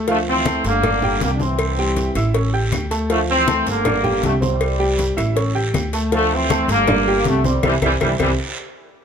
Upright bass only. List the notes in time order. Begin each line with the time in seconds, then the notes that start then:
Already playing: D2
0.64 G1
1.21 C2
2.15 A1
2.72 D2
3.66 G1
4.23 C2
5.18 A1
5.74 D2
6.68 G1
7.26 C2
7.63 C2
7.82 C2
8.01 C2
8.20 C2